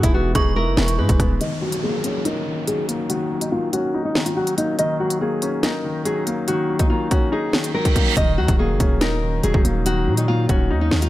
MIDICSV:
0, 0, Header, 1, 8, 480
1, 0, Start_track
1, 0, Key_signature, -6, "minor"
1, 0, Tempo, 422535
1, 1598, Time_signature, 4, 2, 24, 8
1, 12601, End_track
2, 0, Start_track
2, 0, Title_t, "Synth bell"
2, 0, Program_c, 0, 98
2, 405, Note_on_c, 0, 85, 85
2, 1079, Note_off_c, 0, 85, 0
2, 12601, End_track
3, 0, Start_track
3, 0, Title_t, "Nylon-string guitar"
3, 0, Program_c, 1, 24
3, 36, Note_on_c, 1, 64, 78
3, 134, Note_off_c, 1, 64, 0
3, 162, Note_on_c, 1, 66, 88
3, 355, Note_off_c, 1, 66, 0
3, 400, Note_on_c, 1, 68, 82
3, 594, Note_off_c, 1, 68, 0
3, 638, Note_on_c, 1, 70, 89
3, 1089, Note_off_c, 1, 70, 0
3, 1119, Note_on_c, 1, 71, 72
3, 1570, Note_off_c, 1, 71, 0
3, 1604, Note_on_c, 1, 75, 98
3, 1796, Note_off_c, 1, 75, 0
3, 1837, Note_on_c, 1, 66, 82
3, 2032, Note_off_c, 1, 66, 0
3, 2080, Note_on_c, 1, 68, 74
3, 2530, Note_off_c, 1, 68, 0
3, 2565, Note_on_c, 1, 70, 85
3, 3013, Note_off_c, 1, 70, 0
3, 3038, Note_on_c, 1, 68, 70
3, 3232, Note_off_c, 1, 68, 0
3, 3519, Note_on_c, 1, 66, 98
3, 3857, Note_off_c, 1, 66, 0
3, 3878, Note_on_c, 1, 63, 66
3, 3976, Note_off_c, 1, 63, 0
3, 4000, Note_on_c, 1, 65, 90
3, 4194, Note_off_c, 1, 65, 0
3, 4239, Note_on_c, 1, 66, 84
3, 4577, Note_off_c, 1, 66, 0
3, 4601, Note_on_c, 1, 63, 83
3, 4795, Note_off_c, 1, 63, 0
3, 4839, Note_on_c, 1, 65, 78
3, 4936, Note_off_c, 1, 65, 0
3, 4960, Note_on_c, 1, 66, 78
3, 5154, Note_off_c, 1, 66, 0
3, 5200, Note_on_c, 1, 63, 79
3, 5394, Note_off_c, 1, 63, 0
3, 5441, Note_on_c, 1, 75, 103
3, 5635, Note_off_c, 1, 75, 0
3, 5682, Note_on_c, 1, 66, 73
3, 5875, Note_off_c, 1, 66, 0
3, 5920, Note_on_c, 1, 68, 72
3, 6370, Note_off_c, 1, 68, 0
3, 6401, Note_on_c, 1, 70, 79
3, 6851, Note_off_c, 1, 70, 0
3, 6877, Note_on_c, 1, 68, 79
3, 7072, Note_off_c, 1, 68, 0
3, 7362, Note_on_c, 1, 66, 92
3, 7699, Note_off_c, 1, 66, 0
3, 7715, Note_on_c, 1, 63, 74
3, 7813, Note_off_c, 1, 63, 0
3, 7834, Note_on_c, 1, 65, 79
3, 8031, Note_off_c, 1, 65, 0
3, 8083, Note_on_c, 1, 66, 76
3, 8276, Note_off_c, 1, 66, 0
3, 8320, Note_on_c, 1, 68, 80
3, 8770, Note_off_c, 1, 68, 0
3, 8798, Note_on_c, 1, 70, 84
3, 9249, Note_off_c, 1, 70, 0
3, 9282, Note_on_c, 1, 75, 98
3, 9475, Note_off_c, 1, 75, 0
3, 9518, Note_on_c, 1, 66, 85
3, 9712, Note_off_c, 1, 66, 0
3, 9759, Note_on_c, 1, 68, 79
3, 10210, Note_off_c, 1, 68, 0
3, 10245, Note_on_c, 1, 70, 82
3, 10693, Note_off_c, 1, 70, 0
3, 10720, Note_on_c, 1, 68, 75
3, 10914, Note_off_c, 1, 68, 0
3, 11203, Note_on_c, 1, 66, 101
3, 11539, Note_off_c, 1, 66, 0
3, 11559, Note_on_c, 1, 63, 65
3, 11656, Note_off_c, 1, 63, 0
3, 11679, Note_on_c, 1, 65, 97
3, 11873, Note_off_c, 1, 65, 0
3, 11921, Note_on_c, 1, 66, 86
3, 12258, Note_off_c, 1, 66, 0
3, 12283, Note_on_c, 1, 63, 80
3, 12476, Note_off_c, 1, 63, 0
3, 12523, Note_on_c, 1, 65, 77
3, 12601, Note_off_c, 1, 65, 0
3, 12601, End_track
4, 0, Start_track
4, 0, Title_t, "Grand piano"
4, 0, Program_c, 2, 0
4, 0, Control_c, 2, 64, 127
4, 0, Note_on_c, 2, 52, 93
4, 0, Note_on_c, 2, 56, 77
4, 0, Note_on_c, 2, 59, 81
4, 0, Note_on_c, 2, 63, 87
4, 0, Note_on_c, 2, 64, 98
4, 139, Note_off_c, 2, 59, 0
4, 156, Note_on_c, 2, 59, 91
4, 401, Note_off_c, 2, 63, 0
4, 401, Note_on_c, 2, 63, 86
4, 641, Note_off_c, 2, 64, 0
4, 641, Note_on_c, 2, 64, 94
4, 870, Note_off_c, 2, 52, 0
4, 887, Note_on_c, 2, 52, 81
4, 1099, Note_off_c, 2, 56, 0
4, 1116, Note_on_c, 2, 56, 87
4, 1346, Note_off_c, 2, 59, 0
4, 1363, Note_on_c, 2, 59, 89
4, 1597, Note_off_c, 2, 56, 0
4, 1600, Note_off_c, 2, 63, 0
4, 1600, Note_off_c, 2, 64, 0
4, 1601, Note_off_c, 2, 59, 0
4, 1603, Note_off_c, 2, 52, 0
4, 1603, Note_on_c, 2, 51, 86
4, 1614, Control_c, 2, 64, 0
4, 1820, Control_c, 2, 64, 127
4, 1843, Note_on_c, 2, 54, 83
4, 2079, Note_on_c, 2, 58, 86
4, 2314, Note_on_c, 2, 61, 82
4, 2559, Note_on_c, 2, 63, 99
4, 2778, Note_off_c, 2, 51, 0
4, 2795, Note_on_c, 2, 51, 72
4, 3023, Note_off_c, 2, 54, 0
4, 3041, Note_on_c, 2, 54, 82
4, 3257, Note_off_c, 2, 58, 0
4, 3274, Note_on_c, 2, 58, 84
4, 3503, Note_off_c, 2, 51, 0
4, 3516, Note_off_c, 2, 61, 0
4, 3520, Note_on_c, 2, 51, 84
4, 3742, Note_off_c, 2, 54, 0
4, 3759, Note_off_c, 2, 63, 0
4, 3759, Note_on_c, 2, 54, 75
4, 3978, Note_off_c, 2, 58, 0
4, 3995, Note_on_c, 2, 58, 84
4, 4239, Note_on_c, 2, 61, 85
4, 4480, Note_on_c, 2, 63, 92
4, 4701, Note_off_c, 2, 51, 0
4, 4718, Note_on_c, 2, 51, 74
4, 4940, Note_off_c, 2, 54, 0
4, 4957, Note_on_c, 2, 54, 80
4, 5180, Note_off_c, 2, 58, 0
4, 5197, Note_on_c, 2, 58, 81
4, 5419, Note_off_c, 2, 51, 0
4, 5436, Note_on_c, 2, 51, 89
4, 5439, Note_off_c, 2, 61, 0
4, 5661, Note_off_c, 2, 54, 0
4, 5679, Note_off_c, 2, 63, 0
4, 5679, Note_on_c, 2, 54, 79
4, 5903, Note_off_c, 2, 58, 0
4, 5920, Note_on_c, 2, 58, 83
4, 6163, Note_on_c, 2, 61, 88
4, 6395, Note_on_c, 2, 63, 100
4, 6622, Note_off_c, 2, 51, 0
4, 6639, Note_on_c, 2, 51, 77
4, 6858, Note_off_c, 2, 54, 0
4, 6875, Note_on_c, 2, 54, 89
4, 7101, Note_off_c, 2, 58, 0
4, 7118, Note_on_c, 2, 58, 89
4, 7339, Note_off_c, 2, 51, 0
4, 7356, Note_on_c, 2, 51, 92
4, 7360, Note_off_c, 2, 61, 0
4, 7579, Note_off_c, 2, 54, 0
4, 7596, Note_on_c, 2, 54, 80
4, 7597, Note_off_c, 2, 63, 0
4, 7823, Note_off_c, 2, 58, 0
4, 7840, Note_on_c, 2, 58, 89
4, 8076, Note_on_c, 2, 61, 84
4, 8315, Note_on_c, 2, 63, 90
4, 8538, Note_off_c, 2, 51, 0
4, 8555, Note_on_c, 2, 51, 76
4, 8779, Note_off_c, 2, 54, 0
4, 8796, Note_on_c, 2, 54, 82
4, 9020, Note_off_c, 2, 58, 0
4, 9037, Note_on_c, 2, 58, 79
4, 9264, Note_off_c, 2, 51, 0
4, 9277, Note_off_c, 2, 54, 0
4, 9277, Note_off_c, 2, 61, 0
4, 9277, Note_off_c, 2, 63, 0
4, 9278, Note_off_c, 2, 58, 0
4, 9281, Note_on_c, 2, 51, 89
4, 9292, Control_c, 2, 64, 0
4, 9518, Control_c, 2, 64, 127
4, 9522, Note_on_c, 2, 54, 80
4, 9761, Note_on_c, 2, 58, 89
4, 9995, Note_on_c, 2, 61, 82
4, 10239, Note_on_c, 2, 63, 101
4, 10459, Note_off_c, 2, 51, 0
4, 10476, Note_on_c, 2, 51, 75
4, 10704, Note_off_c, 2, 54, 0
4, 10721, Note_on_c, 2, 54, 87
4, 10937, Note_off_c, 2, 58, 0
4, 10954, Note_on_c, 2, 58, 85
4, 11183, Note_off_c, 2, 51, 0
4, 11196, Note_off_c, 2, 61, 0
4, 11200, Note_on_c, 2, 51, 86
4, 11421, Note_off_c, 2, 54, 0
4, 11438, Note_on_c, 2, 54, 76
4, 11439, Note_off_c, 2, 63, 0
4, 11660, Note_off_c, 2, 58, 0
4, 11677, Note_on_c, 2, 58, 83
4, 11920, Note_on_c, 2, 61, 89
4, 12161, Note_on_c, 2, 63, 93
4, 12382, Note_off_c, 2, 51, 0
4, 12399, Note_on_c, 2, 51, 79
4, 12601, Note_off_c, 2, 51, 0
4, 12601, Note_off_c, 2, 54, 0
4, 12601, Note_off_c, 2, 58, 0
4, 12601, Note_off_c, 2, 61, 0
4, 12601, Note_off_c, 2, 63, 0
4, 12601, End_track
5, 0, Start_track
5, 0, Title_t, "808-style bass"
5, 0, Program_c, 3, 38
5, 39, Note_on_c, 3, 28, 104
5, 385, Note_off_c, 3, 28, 0
5, 400, Note_on_c, 3, 28, 105
5, 759, Note_on_c, 3, 30, 98
5, 776, Note_off_c, 3, 28, 0
5, 873, Note_off_c, 3, 30, 0
5, 880, Note_on_c, 3, 28, 110
5, 1120, Note_on_c, 3, 44, 99
5, 1137, Note_off_c, 3, 28, 0
5, 1233, Note_off_c, 3, 44, 0
5, 1239, Note_on_c, 3, 28, 104
5, 1354, Note_off_c, 3, 28, 0
5, 1359, Note_on_c, 3, 27, 107
5, 1589, Note_off_c, 3, 27, 0
5, 9278, Note_on_c, 3, 27, 107
5, 9518, Note_on_c, 3, 39, 96
5, 9535, Note_off_c, 3, 27, 0
5, 9632, Note_off_c, 3, 39, 0
5, 9638, Note_on_c, 3, 27, 101
5, 9878, Note_on_c, 3, 30, 98
5, 9895, Note_off_c, 3, 27, 0
5, 9992, Note_off_c, 3, 30, 0
5, 9999, Note_on_c, 3, 27, 105
5, 10690, Note_off_c, 3, 27, 0
5, 10719, Note_on_c, 3, 27, 101
5, 10834, Note_off_c, 3, 27, 0
5, 10840, Note_on_c, 3, 27, 102
5, 10954, Note_off_c, 3, 27, 0
5, 10960, Note_on_c, 3, 27, 106
5, 11440, Note_on_c, 3, 46, 101
5, 11457, Note_off_c, 3, 27, 0
5, 11895, Note_off_c, 3, 46, 0
5, 11920, Note_on_c, 3, 27, 106
5, 12160, Note_on_c, 3, 39, 100
5, 12177, Note_off_c, 3, 27, 0
5, 12387, Note_off_c, 3, 39, 0
5, 12399, Note_on_c, 3, 39, 103
5, 12601, Note_off_c, 3, 39, 0
5, 12601, End_track
6, 0, Start_track
6, 0, Title_t, "Downlifter"
6, 0, Program_c, 4, 103
6, 1599, Note_on_c, 4, 60, 83
6, 5439, Note_off_c, 4, 60, 0
6, 12601, End_track
7, 0, Start_track
7, 0, Title_t, "Reverse cymbal"
7, 0, Program_c, 5, 119
7, 8319, Note_on_c, 5, 60, 86
7, 9279, Note_off_c, 5, 60, 0
7, 12601, End_track
8, 0, Start_track
8, 0, Title_t, "Drums"
8, 38, Note_on_c, 9, 42, 84
8, 39, Note_on_c, 9, 36, 89
8, 152, Note_off_c, 9, 42, 0
8, 153, Note_off_c, 9, 36, 0
8, 398, Note_on_c, 9, 42, 87
8, 399, Note_on_c, 9, 37, 90
8, 400, Note_on_c, 9, 36, 104
8, 512, Note_off_c, 9, 37, 0
8, 512, Note_off_c, 9, 42, 0
8, 513, Note_off_c, 9, 36, 0
8, 877, Note_on_c, 9, 38, 118
8, 991, Note_off_c, 9, 38, 0
8, 999, Note_on_c, 9, 42, 80
8, 1112, Note_off_c, 9, 42, 0
8, 1238, Note_on_c, 9, 42, 70
8, 1240, Note_on_c, 9, 36, 100
8, 1352, Note_off_c, 9, 42, 0
8, 1353, Note_off_c, 9, 36, 0
8, 1358, Note_on_c, 9, 37, 90
8, 1359, Note_on_c, 9, 36, 92
8, 1360, Note_on_c, 9, 42, 83
8, 1472, Note_off_c, 9, 36, 0
8, 1472, Note_off_c, 9, 37, 0
8, 1474, Note_off_c, 9, 42, 0
8, 1599, Note_on_c, 9, 42, 93
8, 1713, Note_off_c, 9, 42, 0
8, 1958, Note_on_c, 9, 42, 80
8, 2071, Note_off_c, 9, 42, 0
8, 2317, Note_on_c, 9, 42, 83
8, 2431, Note_off_c, 9, 42, 0
8, 2558, Note_on_c, 9, 42, 71
8, 2672, Note_off_c, 9, 42, 0
8, 3038, Note_on_c, 9, 42, 77
8, 3152, Note_off_c, 9, 42, 0
8, 3281, Note_on_c, 9, 42, 80
8, 3394, Note_off_c, 9, 42, 0
8, 3518, Note_on_c, 9, 42, 90
8, 3632, Note_off_c, 9, 42, 0
8, 3877, Note_on_c, 9, 42, 80
8, 3991, Note_off_c, 9, 42, 0
8, 4238, Note_on_c, 9, 42, 83
8, 4352, Note_off_c, 9, 42, 0
8, 4719, Note_on_c, 9, 38, 107
8, 4832, Note_off_c, 9, 38, 0
8, 4839, Note_on_c, 9, 42, 76
8, 4953, Note_off_c, 9, 42, 0
8, 5078, Note_on_c, 9, 42, 69
8, 5192, Note_off_c, 9, 42, 0
8, 5201, Note_on_c, 9, 42, 84
8, 5314, Note_off_c, 9, 42, 0
8, 5438, Note_on_c, 9, 42, 92
8, 5551, Note_off_c, 9, 42, 0
8, 5798, Note_on_c, 9, 42, 81
8, 5911, Note_off_c, 9, 42, 0
8, 6157, Note_on_c, 9, 42, 83
8, 6271, Note_off_c, 9, 42, 0
8, 6397, Note_on_c, 9, 38, 111
8, 6399, Note_on_c, 9, 42, 70
8, 6511, Note_off_c, 9, 38, 0
8, 6512, Note_off_c, 9, 42, 0
8, 6878, Note_on_c, 9, 42, 75
8, 6992, Note_off_c, 9, 42, 0
8, 7121, Note_on_c, 9, 42, 81
8, 7235, Note_off_c, 9, 42, 0
8, 7358, Note_on_c, 9, 42, 92
8, 7472, Note_off_c, 9, 42, 0
8, 7717, Note_on_c, 9, 42, 78
8, 7719, Note_on_c, 9, 36, 88
8, 7831, Note_off_c, 9, 42, 0
8, 7832, Note_off_c, 9, 36, 0
8, 8078, Note_on_c, 9, 42, 82
8, 8079, Note_on_c, 9, 36, 99
8, 8192, Note_off_c, 9, 42, 0
8, 8193, Note_off_c, 9, 36, 0
8, 8558, Note_on_c, 9, 38, 112
8, 8671, Note_off_c, 9, 38, 0
8, 8679, Note_on_c, 9, 42, 76
8, 8792, Note_off_c, 9, 42, 0
8, 8919, Note_on_c, 9, 36, 97
8, 8919, Note_on_c, 9, 42, 70
8, 9032, Note_off_c, 9, 42, 0
8, 9033, Note_off_c, 9, 36, 0
8, 9038, Note_on_c, 9, 36, 89
8, 9040, Note_on_c, 9, 42, 83
8, 9152, Note_off_c, 9, 36, 0
8, 9154, Note_off_c, 9, 42, 0
8, 9278, Note_on_c, 9, 42, 97
8, 9279, Note_on_c, 9, 36, 107
8, 9392, Note_off_c, 9, 36, 0
8, 9392, Note_off_c, 9, 42, 0
8, 9637, Note_on_c, 9, 42, 82
8, 9638, Note_on_c, 9, 36, 88
8, 9751, Note_off_c, 9, 42, 0
8, 9752, Note_off_c, 9, 36, 0
8, 9998, Note_on_c, 9, 42, 83
8, 9999, Note_on_c, 9, 36, 99
8, 10111, Note_off_c, 9, 42, 0
8, 10112, Note_off_c, 9, 36, 0
8, 10236, Note_on_c, 9, 38, 110
8, 10238, Note_on_c, 9, 42, 73
8, 10350, Note_off_c, 9, 38, 0
8, 10351, Note_off_c, 9, 42, 0
8, 10718, Note_on_c, 9, 42, 79
8, 10832, Note_off_c, 9, 42, 0
8, 10839, Note_on_c, 9, 36, 97
8, 10953, Note_off_c, 9, 36, 0
8, 10961, Note_on_c, 9, 42, 83
8, 11075, Note_off_c, 9, 42, 0
8, 11199, Note_on_c, 9, 42, 97
8, 11313, Note_off_c, 9, 42, 0
8, 11557, Note_on_c, 9, 42, 82
8, 11671, Note_off_c, 9, 42, 0
8, 11919, Note_on_c, 9, 42, 87
8, 11920, Note_on_c, 9, 36, 98
8, 12032, Note_off_c, 9, 42, 0
8, 12033, Note_off_c, 9, 36, 0
8, 12399, Note_on_c, 9, 38, 112
8, 12512, Note_off_c, 9, 38, 0
8, 12519, Note_on_c, 9, 42, 80
8, 12601, Note_off_c, 9, 42, 0
8, 12601, End_track
0, 0, End_of_file